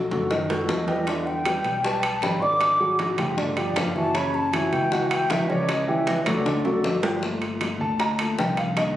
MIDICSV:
0, 0, Header, 1, 5, 480
1, 0, Start_track
1, 0, Key_signature, 2, "minor"
1, 0, Tempo, 384862
1, 1336, Time_signature, 4, 2, 24, 8
1, 11181, End_track
2, 0, Start_track
2, 0, Title_t, "Bansuri"
2, 0, Program_c, 0, 73
2, 868, Note_on_c, 0, 75, 72
2, 1351, Note_on_c, 0, 76, 86
2, 1370, Note_off_c, 0, 75, 0
2, 1586, Note_on_c, 0, 79, 103
2, 1605, Note_off_c, 0, 76, 0
2, 2305, Note_on_c, 0, 81, 95
2, 2324, Note_off_c, 0, 79, 0
2, 2783, Note_on_c, 0, 83, 83
2, 2802, Note_off_c, 0, 81, 0
2, 3020, Note_on_c, 0, 86, 99
2, 3039, Note_off_c, 0, 83, 0
2, 3737, Note_off_c, 0, 86, 0
2, 4458, Note_on_c, 0, 74, 85
2, 4700, Note_on_c, 0, 77, 78
2, 4719, Note_off_c, 0, 74, 0
2, 4932, Note_off_c, 0, 77, 0
2, 4940, Note_on_c, 0, 81, 102
2, 5188, Note_on_c, 0, 83, 93
2, 5207, Note_off_c, 0, 81, 0
2, 5420, Note_on_c, 0, 81, 105
2, 5438, Note_off_c, 0, 83, 0
2, 5657, Note_on_c, 0, 80, 93
2, 5676, Note_off_c, 0, 81, 0
2, 5895, Note_on_c, 0, 79, 104
2, 5913, Note_off_c, 0, 80, 0
2, 6141, Note_on_c, 0, 78, 89
2, 6159, Note_off_c, 0, 79, 0
2, 6374, Note_off_c, 0, 78, 0
2, 6381, Note_on_c, 0, 80, 101
2, 6440, Note_on_c, 0, 79, 110
2, 6452, Note_off_c, 0, 80, 0
2, 6623, Note_on_c, 0, 76, 88
2, 6641, Note_off_c, 0, 79, 0
2, 6861, Note_on_c, 0, 75, 87
2, 6880, Note_off_c, 0, 76, 0
2, 6909, Note_on_c, 0, 74, 94
2, 6921, Note_off_c, 0, 75, 0
2, 7105, Note_on_c, 0, 75, 81
2, 7123, Note_off_c, 0, 74, 0
2, 7339, Note_on_c, 0, 67, 72
2, 7358, Note_off_c, 0, 75, 0
2, 7586, Note_on_c, 0, 71, 73
2, 7605, Note_off_c, 0, 67, 0
2, 7823, Note_on_c, 0, 74, 91
2, 7842, Note_off_c, 0, 71, 0
2, 8900, Note_off_c, 0, 74, 0
2, 11181, End_track
3, 0, Start_track
3, 0, Title_t, "Grand piano"
3, 0, Program_c, 1, 0
3, 143, Note_on_c, 1, 54, 68
3, 146, Note_on_c, 1, 66, 73
3, 148, Note_on_c, 1, 69, 73
3, 337, Note_off_c, 1, 54, 0
3, 339, Note_off_c, 1, 66, 0
3, 340, Note_off_c, 1, 69, 0
3, 383, Note_on_c, 1, 51, 79
3, 386, Note_on_c, 1, 63, 84
3, 389, Note_on_c, 1, 75, 76
3, 577, Note_off_c, 1, 51, 0
3, 579, Note_off_c, 1, 63, 0
3, 580, Note_off_c, 1, 75, 0
3, 623, Note_on_c, 1, 54, 72
3, 624, Note_on_c, 1, 66, 70
3, 627, Note_on_c, 1, 69, 68
3, 1014, Note_off_c, 1, 54, 0
3, 1014, Note_off_c, 1, 66, 0
3, 1016, Note_off_c, 1, 69, 0
3, 1100, Note_on_c, 1, 55, 71
3, 1104, Note_on_c, 1, 67, 76
3, 1109, Note_on_c, 1, 71, 74
3, 1295, Note_off_c, 1, 55, 0
3, 1298, Note_off_c, 1, 67, 0
3, 1300, Note_off_c, 1, 71, 0
3, 1339, Note_on_c, 1, 50, 80
3, 1340, Note_on_c, 1, 62, 75
3, 1347, Note_on_c, 1, 74, 76
3, 1731, Note_off_c, 1, 50, 0
3, 1731, Note_off_c, 1, 62, 0
3, 1736, Note_off_c, 1, 74, 0
3, 1822, Note_on_c, 1, 55, 66
3, 1826, Note_on_c, 1, 67, 66
3, 1827, Note_on_c, 1, 71, 62
3, 2212, Note_off_c, 1, 55, 0
3, 2215, Note_off_c, 1, 67, 0
3, 2216, Note_off_c, 1, 71, 0
3, 2292, Note_on_c, 1, 55, 67
3, 2297, Note_on_c, 1, 67, 74
3, 2299, Note_on_c, 1, 71, 70
3, 2686, Note_off_c, 1, 55, 0
3, 2689, Note_off_c, 1, 67, 0
3, 2691, Note_off_c, 1, 71, 0
3, 2775, Note_on_c, 1, 55, 65
3, 2777, Note_on_c, 1, 67, 66
3, 2783, Note_on_c, 1, 71, 69
3, 2971, Note_off_c, 1, 55, 0
3, 2973, Note_off_c, 1, 67, 0
3, 2976, Note_off_c, 1, 71, 0
3, 3013, Note_on_c, 1, 50, 78
3, 3018, Note_on_c, 1, 62, 82
3, 3022, Note_on_c, 1, 74, 89
3, 3407, Note_off_c, 1, 50, 0
3, 3410, Note_off_c, 1, 62, 0
3, 3412, Note_off_c, 1, 74, 0
3, 3492, Note_on_c, 1, 54, 77
3, 3493, Note_on_c, 1, 66, 69
3, 3497, Note_on_c, 1, 68, 76
3, 3886, Note_off_c, 1, 54, 0
3, 3887, Note_off_c, 1, 66, 0
3, 3889, Note_off_c, 1, 68, 0
3, 3974, Note_on_c, 1, 53, 77
3, 3975, Note_on_c, 1, 65, 74
3, 3980, Note_on_c, 1, 67, 82
3, 4171, Note_off_c, 1, 53, 0
3, 4171, Note_off_c, 1, 65, 0
3, 4174, Note_off_c, 1, 67, 0
3, 4207, Note_on_c, 1, 50, 83
3, 4211, Note_on_c, 1, 62, 83
3, 4216, Note_on_c, 1, 74, 72
3, 4406, Note_off_c, 1, 50, 0
3, 4409, Note_off_c, 1, 62, 0
3, 4412, Note_off_c, 1, 74, 0
3, 4451, Note_on_c, 1, 53, 72
3, 4454, Note_on_c, 1, 65, 71
3, 4459, Note_on_c, 1, 67, 67
3, 4845, Note_off_c, 1, 53, 0
3, 4847, Note_off_c, 1, 65, 0
3, 4850, Note_off_c, 1, 67, 0
3, 4932, Note_on_c, 1, 52, 79
3, 4935, Note_on_c, 1, 64, 73
3, 4938, Note_on_c, 1, 66, 73
3, 5129, Note_off_c, 1, 52, 0
3, 5131, Note_off_c, 1, 64, 0
3, 5133, Note_off_c, 1, 66, 0
3, 5164, Note_on_c, 1, 49, 76
3, 5170, Note_on_c, 1, 61, 81
3, 5173, Note_on_c, 1, 73, 82
3, 5562, Note_off_c, 1, 49, 0
3, 5565, Note_off_c, 1, 61, 0
3, 5567, Note_off_c, 1, 73, 0
3, 5650, Note_on_c, 1, 52, 69
3, 5656, Note_on_c, 1, 64, 73
3, 5660, Note_on_c, 1, 66, 70
3, 6045, Note_off_c, 1, 52, 0
3, 6049, Note_off_c, 1, 64, 0
3, 6051, Note_off_c, 1, 66, 0
3, 6130, Note_on_c, 1, 52, 74
3, 6134, Note_on_c, 1, 64, 77
3, 6134, Note_on_c, 1, 66, 75
3, 6525, Note_off_c, 1, 52, 0
3, 6528, Note_off_c, 1, 64, 0
3, 6528, Note_off_c, 1, 66, 0
3, 6608, Note_on_c, 1, 52, 68
3, 6611, Note_on_c, 1, 64, 68
3, 6618, Note_on_c, 1, 66, 69
3, 6807, Note_off_c, 1, 52, 0
3, 6809, Note_off_c, 1, 64, 0
3, 6813, Note_off_c, 1, 66, 0
3, 6848, Note_on_c, 1, 49, 82
3, 6853, Note_on_c, 1, 61, 83
3, 6855, Note_on_c, 1, 73, 91
3, 7244, Note_off_c, 1, 49, 0
3, 7247, Note_off_c, 1, 61, 0
3, 7248, Note_off_c, 1, 73, 0
3, 7329, Note_on_c, 1, 52, 82
3, 7335, Note_on_c, 1, 64, 81
3, 7337, Note_on_c, 1, 67, 78
3, 7725, Note_off_c, 1, 52, 0
3, 7728, Note_off_c, 1, 64, 0
3, 7730, Note_off_c, 1, 67, 0
3, 7810, Note_on_c, 1, 54, 85
3, 7817, Note_on_c, 1, 66, 80
3, 7821, Note_on_c, 1, 69, 77
3, 8009, Note_off_c, 1, 54, 0
3, 8013, Note_off_c, 1, 66, 0
3, 8015, Note_off_c, 1, 69, 0
3, 8047, Note_on_c, 1, 50, 83
3, 8051, Note_on_c, 1, 62, 86
3, 8057, Note_on_c, 1, 74, 82
3, 8247, Note_off_c, 1, 50, 0
3, 8249, Note_off_c, 1, 62, 0
3, 8253, Note_off_c, 1, 74, 0
3, 8289, Note_on_c, 1, 54, 77
3, 8295, Note_on_c, 1, 66, 75
3, 8298, Note_on_c, 1, 69, 76
3, 8686, Note_off_c, 1, 54, 0
3, 8689, Note_off_c, 1, 66, 0
3, 8691, Note_off_c, 1, 69, 0
3, 8772, Note_on_c, 1, 53, 75
3, 8777, Note_on_c, 1, 65, 74
3, 8780, Note_on_c, 1, 67, 76
3, 8971, Note_off_c, 1, 53, 0
3, 8973, Note_off_c, 1, 65, 0
3, 8975, Note_off_c, 1, 67, 0
3, 9004, Note_on_c, 1, 57, 54
3, 9011, Note_on_c, 1, 58, 49
3, 9021, Note_on_c, 1, 65, 64
3, 9694, Note_off_c, 1, 57, 0
3, 9698, Note_off_c, 1, 58, 0
3, 9703, Note_off_c, 1, 65, 0
3, 9740, Note_on_c, 1, 81, 96
3, 9971, Note_off_c, 1, 81, 0
3, 9984, Note_on_c, 1, 82, 97
3, 10211, Note_on_c, 1, 57, 50
3, 10213, Note_on_c, 1, 58, 45
3, 10214, Note_off_c, 1, 82, 0
3, 10219, Note_on_c, 1, 81, 86
3, 10224, Note_on_c, 1, 65, 54
3, 10430, Note_off_c, 1, 57, 0
3, 10431, Note_off_c, 1, 58, 0
3, 10437, Note_off_c, 1, 65, 0
3, 10451, Note_off_c, 1, 81, 0
3, 10460, Note_on_c, 1, 79, 88
3, 10692, Note_off_c, 1, 79, 0
3, 10697, Note_on_c, 1, 77, 93
3, 10927, Note_on_c, 1, 51, 53
3, 10931, Note_off_c, 1, 77, 0
3, 10935, Note_on_c, 1, 58, 53
3, 10942, Note_on_c, 1, 75, 89
3, 10943, Note_on_c, 1, 50, 66
3, 11181, Note_off_c, 1, 50, 0
3, 11181, Note_off_c, 1, 51, 0
3, 11181, Note_off_c, 1, 58, 0
3, 11181, Note_off_c, 1, 75, 0
3, 11181, End_track
4, 0, Start_track
4, 0, Title_t, "Fingered electric bass"
4, 0, Program_c, 2, 33
4, 137, Note_on_c, 2, 42, 98
4, 806, Note_off_c, 2, 42, 0
4, 854, Note_on_c, 2, 40, 84
4, 1980, Note_off_c, 2, 40, 0
4, 2054, Note_on_c, 2, 35, 90
4, 2724, Note_off_c, 2, 35, 0
4, 2774, Note_on_c, 2, 32, 77
4, 3899, Note_off_c, 2, 32, 0
4, 3972, Note_on_c, 2, 31, 94
4, 4643, Note_off_c, 2, 31, 0
4, 4692, Note_on_c, 2, 30, 82
4, 5819, Note_off_c, 2, 30, 0
4, 5891, Note_on_c, 2, 37, 91
4, 6563, Note_off_c, 2, 37, 0
4, 6612, Note_on_c, 2, 37, 95
4, 7740, Note_off_c, 2, 37, 0
4, 7810, Note_on_c, 2, 38, 86
4, 8483, Note_off_c, 2, 38, 0
4, 8532, Note_on_c, 2, 31, 93
4, 9661, Note_off_c, 2, 31, 0
4, 9731, Note_on_c, 2, 38, 90
4, 10405, Note_off_c, 2, 38, 0
4, 10453, Note_on_c, 2, 36, 85
4, 11181, Note_off_c, 2, 36, 0
4, 11181, End_track
5, 0, Start_track
5, 0, Title_t, "Drums"
5, 142, Note_on_c, 9, 63, 103
5, 142, Note_on_c, 9, 64, 86
5, 143, Note_on_c, 9, 60, 34
5, 267, Note_off_c, 9, 63, 0
5, 267, Note_off_c, 9, 64, 0
5, 268, Note_off_c, 9, 60, 0
5, 381, Note_on_c, 9, 66, 86
5, 382, Note_on_c, 9, 63, 34
5, 383, Note_on_c, 9, 60, 61
5, 506, Note_off_c, 9, 66, 0
5, 507, Note_off_c, 9, 63, 0
5, 508, Note_off_c, 9, 60, 0
5, 623, Note_on_c, 9, 63, 32
5, 623, Note_on_c, 9, 66, 88
5, 626, Note_on_c, 9, 60, 34
5, 747, Note_off_c, 9, 63, 0
5, 748, Note_off_c, 9, 66, 0
5, 751, Note_off_c, 9, 60, 0
5, 858, Note_on_c, 9, 66, 74
5, 859, Note_on_c, 9, 63, 80
5, 860, Note_on_c, 9, 60, 68
5, 860, Note_on_c, 9, 61, 82
5, 982, Note_off_c, 9, 66, 0
5, 984, Note_off_c, 9, 60, 0
5, 984, Note_off_c, 9, 61, 0
5, 984, Note_off_c, 9, 63, 0
5, 1094, Note_on_c, 9, 66, 90
5, 1101, Note_on_c, 9, 60, 37
5, 1102, Note_on_c, 9, 63, 37
5, 1219, Note_off_c, 9, 66, 0
5, 1225, Note_off_c, 9, 60, 0
5, 1227, Note_off_c, 9, 63, 0
5, 1334, Note_on_c, 9, 65, 64
5, 1340, Note_on_c, 9, 60, 65
5, 1341, Note_on_c, 9, 63, 33
5, 1458, Note_off_c, 9, 65, 0
5, 1465, Note_off_c, 9, 60, 0
5, 1465, Note_off_c, 9, 63, 0
5, 1580, Note_on_c, 9, 63, 30
5, 1584, Note_on_c, 9, 60, 36
5, 1704, Note_off_c, 9, 63, 0
5, 1709, Note_off_c, 9, 60, 0
5, 1814, Note_on_c, 9, 65, 106
5, 1815, Note_on_c, 9, 63, 57
5, 1825, Note_on_c, 9, 60, 64
5, 1939, Note_off_c, 9, 65, 0
5, 1940, Note_off_c, 9, 63, 0
5, 1949, Note_off_c, 9, 60, 0
5, 2051, Note_on_c, 9, 65, 67
5, 2058, Note_on_c, 9, 63, 36
5, 2063, Note_on_c, 9, 60, 35
5, 2176, Note_off_c, 9, 65, 0
5, 2183, Note_off_c, 9, 63, 0
5, 2187, Note_off_c, 9, 60, 0
5, 2297, Note_on_c, 9, 63, 37
5, 2301, Note_on_c, 9, 60, 73
5, 2422, Note_off_c, 9, 63, 0
5, 2426, Note_off_c, 9, 60, 0
5, 2532, Note_on_c, 9, 63, 38
5, 2533, Note_on_c, 9, 65, 108
5, 2657, Note_off_c, 9, 63, 0
5, 2657, Note_off_c, 9, 65, 0
5, 2769, Note_on_c, 9, 65, 68
5, 2774, Note_on_c, 9, 63, 87
5, 2781, Note_on_c, 9, 60, 72
5, 2781, Note_on_c, 9, 61, 88
5, 2894, Note_off_c, 9, 65, 0
5, 2898, Note_off_c, 9, 63, 0
5, 2905, Note_off_c, 9, 60, 0
5, 2905, Note_off_c, 9, 61, 0
5, 3022, Note_on_c, 9, 60, 33
5, 3146, Note_off_c, 9, 60, 0
5, 3249, Note_on_c, 9, 65, 87
5, 3254, Note_on_c, 9, 63, 33
5, 3259, Note_on_c, 9, 60, 61
5, 3374, Note_off_c, 9, 65, 0
5, 3379, Note_off_c, 9, 63, 0
5, 3383, Note_off_c, 9, 60, 0
5, 3499, Note_on_c, 9, 63, 33
5, 3624, Note_off_c, 9, 63, 0
5, 3728, Note_on_c, 9, 65, 71
5, 3732, Note_on_c, 9, 63, 92
5, 3736, Note_on_c, 9, 60, 65
5, 3853, Note_off_c, 9, 65, 0
5, 3857, Note_off_c, 9, 63, 0
5, 3861, Note_off_c, 9, 60, 0
5, 3966, Note_on_c, 9, 65, 89
5, 3972, Note_on_c, 9, 63, 97
5, 3972, Note_on_c, 9, 64, 94
5, 3977, Note_on_c, 9, 60, 31
5, 4091, Note_off_c, 9, 65, 0
5, 4097, Note_off_c, 9, 63, 0
5, 4097, Note_off_c, 9, 64, 0
5, 4101, Note_off_c, 9, 60, 0
5, 4214, Note_on_c, 9, 60, 67
5, 4216, Note_on_c, 9, 63, 32
5, 4216, Note_on_c, 9, 64, 76
5, 4339, Note_off_c, 9, 60, 0
5, 4341, Note_off_c, 9, 63, 0
5, 4341, Note_off_c, 9, 64, 0
5, 4449, Note_on_c, 9, 65, 80
5, 4456, Note_on_c, 9, 60, 36
5, 4457, Note_on_c, 9, 63, 33
5, 4574, Note_off_c, 9, 65, 0
5, 4581, Note_off_c, 9, 60, 0
5, 4582, Note_off_c, 9, 63, 0
5, 4691, Note_on_c, 9, 65, 92
5, 4691, Note_on_c, 9, 66, 82
5, 4696, Note_on_c, 9, 60, 73
5, 4696, Note_on_c, 9, 61, 90
5, 4696, Note_on_c, 9, 63, 92
5, 4816, Note_off_c, 9, 65, 0
5, 4816, Note_off_c, 9, 66, 0
5, 4821, Note_off_c, 9, 60, 0
5, 4821, Note_off_c, 9, 61, 0
5, 4821, Note_off_c, 9, 63, 0
5, 4933, Note_on_c, 9, 63, 40
5, 4935, Note_on_c, 9, 60, 34
5, 5057, Note_off_c, 9, 63, 0
5, 5060, Note_off_c, 9, 60, 0
5, 5171, Note_on_c, 9, 65, 76
5, 5172, Note_on_c, 9, 63, 32
5, 5175, Note_on_c, 9, 60, 65
5, 5296, Note_off_c, 9, 63, 0
5, 5296, Note_off_c, 9, 65, 0
5, 5299, Note_off_c, 9, 60, 0
5, 5413, Note_on_c, 9, 63, 32
5, 5414, Note_on_c, 9, 60, 30
5, 5537, Note_off_c, 9, 63, 0
5, 5539, Note_off_c, 9, 60, 0
5, 5653, Note_on_c, 9, 60, 58
5, 5653, Note_on_c, 9, 63, 59
5, 5656, Note_on_c, 9, 65, 104
5, 5778, Note_off_c, 9, 60, 0
5, 5778, Note_off_c, 9, 63, 0
5, 5781, Note_off_c, 9, 65, 0
5, 5895, Note_on_c, 9, 63, 37
5, 5895, Note_on_c, 9, 65, 65
5, 5897, Note_on_c, 9, 60, 34
5, 6019, Note_off_c, 9, 65, 0
5, 6020, Note_off_c, 9, 63, 0
5, 6021, Note_off_c, 9, 60, 0
5, 6133, Note_on_c, 9, 63, 37
5, 6135, Note_on_c, 9, 60, 71
5, 6258, Note_off_c, 9, 63, 0
5, 6260, Note_off_c, 9, 60, 0
5, 6372, Note_on_c, 9, 63, 35
5, 6372, Note_on_c, 9, 65, 101
5, 6497, Note_off_c, 9, 63, 0
5, 6497, Note_off_c, 9, 65, 0
5, 6608, Note_on_c, 9, 65, 77
5, 6613, Note_on_c, 9, 63, 86
5, 6615, Note_on_c, 9, 60, 76
5, 6615, Note_on_c, 9, 61, 89
5, 6733, Note_off_c, 9, 65, 0
5, 6737, Note_off_c, 9, 63, 0
5, 6739, Note_off_c, 9, 60, 0
5, 6739, Note_off_c, 9, 61, 0
5, 6856, Note_on_c, 9, 60, 36
5, 6856, Note_on_c, 9, 63, 84
5, 6981, Note_off_c, 9, 60, 0
5, 6981, Note_off_c, 9, 63, 0
5, 7091, Note_on_c, 9, 65, 92
5, 7093, Note_on_c, 9, 63, 34
5, 7096, Note_on_c, 9, 60, 66
5, 7216, Note_off_c, 9, 65, 0
5, 7217, Note_off_c, 9, 63, 0
5, 7221, Note_off_c, 9, 60, 0
5, 7334, Note_on_c, 9, 63, 34
5, 7459, Note_off_c, 9, 63, 0
5, 7570, Note_on_c, 9, 65, 72
5, 7572, Note_on_c, 9, 63, 95
5, 7573, Note_on_c, 9, 60, 63
5, 7694, Note_off_c, 9, 65, 0
5, 7697, Note_off_c, 9, 63, 0
5, 7698, Note_off_c, 9, 60, 0
5, 7809, Note_on_c, 9, 65, 98
5, 7813, Note_on_c, 9, 63, 110
5, 7813, Note_on_c, 9, 64, 92
5, 7814, Note_on_c, 9, 60, 31
5, 7934, Note_off_c, 9, 65, 0
5, 7938, Note_off_c, 9, 63, 0
5, 7938, Note_off_c, 9, 64, 0
5, 7939, Note_off_c, 9, 60, 0
5, 8054, Note_on_c, 9, 63, 35
5, 8054, Note_on_c, 9, 64, 76
5, 8059, Note_on_c, 9, 60, 69
5, 8179, Note_off_c, 9, 63, 0
5, 8179, Note_off_c, 9, 64, 0
5, 8183, Note_off_c, 9, 60, 0
5, 8293, Note_on_c, 9, 65, 86
5, 8297, Note_on_c, 9, 60, 34
5, 8417, Note_off_c, 9, 65, 0
5, 8422, Note_off_c, 9, 60, 0
5, 8535, Note_on_c, 9, 60, 74
5, 8535, Note_on_c, 9, 61, 84
5, 8535, Note_on_c, 9, 63, 83
5, 8659, Note_off_c, 9, 63, 0
5, 8660, Note_off_c, 9, 60, 0
5, 8660, Note_off_c, 9, 61, 0
5, 8770, Note_on_c, 9, 66, 106
5, 8777, Note_on_c, 9, 60, 35
5, 8894, Note_off_c, 9, 66, 0
5, 8902, Note_off_c, 9, 60, 0
5, 9015, Note_on_c, 9, 60, 59
5, 9018, Note_on_c, 9, 63, 35
5, 9139, Note_off_c, 9, 60, 0
5, 9142, Note_off_c, 9, 63, 0
5, 9250, Note_on_c, 9, 65, 68
5, 9256, Note_on_c, 9, 63, 27
5, 9375, Note_off_c, 9, 65, 0
5, 9381, Note_off_c, 9, 63, 0
5, 9489, Note_on_c, 9, 65, 94
5, 9492, Note_on_c, 9, 63, 57
5, 9495, Note_on_c, 9, 60, 54
5, 9613, Note_off_c, 9, 65, 0
5, 9617, Note_off_c, 9, 63, 0
5, 9620, Note_off_c, 9, 60, 0
5, 9738, Note_on_c, 9, 63, 38
5, 9862, Note_off_c, 9, 63, 0
5, 9971, Note_on_c, 9, 65, 72
5, 9975, Note_on_c, 9, 60, 65
5, 9979, Note_on_c, 9, 63, 35
5, 10096, Note_off_c, 9, 65, 0
5, 10100, Note_off_c, 9, 60, 0
5, 10104, Note_off_c, 9, 63, 0
5, 10213, Note_on_c, 9, 65, 104
5, 10216, Note_on_c, 9, 63, 35
5, 10337, Note_off_c, 9, 65, 0
5, 10341, Note_off_c, 9, 63, 0
5, 10458, Note_on_c, 9, 63, 89
5, 10459, Note_on_c, 9, 60, 72
5, 10459, Note_on_c, 9, 61, 89
5, 10582, Note_off_c, 9, 63, 0
5, 10583, Note_off_c, 9, 60, 0
5, 10583, Note_off_c, 9, 61, 0
5, 10692, Note_on_c, 9, 65, 77
5, 10701, Note_on_c, 9, 63, 73
5, 10817, Note_off_c, 9, 65, 0
5, 10826, Note_off_c, 9, 63, 0
5, 10934, Note_on_c, 9, 65, 91
5, 10939, Note_on_c, 9, 60, 58
5, 10942, Note_on_c, 9, 63, 34
5, 11059, Note_off_c, 9, 65, 0
5, 11063, Note_off_c, 9, 60, 0
5, 11066, Note_off_c, 9, 63, 0
5, 11181, End_track
0, 0, End_of_file